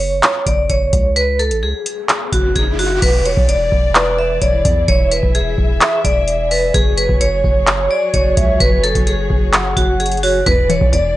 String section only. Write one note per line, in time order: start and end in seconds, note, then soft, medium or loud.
3.02 6.71 E3 medium
3.02 6.71 E4 medium
3.02 11.17 G#4 medium
3.02 4.86 D5 medium
4.88 6.72 E5 medium
6.74 10.43 F#3 medium
6.74 10.43 F#4 medium
6.74 10.43 C#5 medium
10.46 11.17 E3 medium
10.46 11.17 E4 medium
10.46 11.17 D5 medium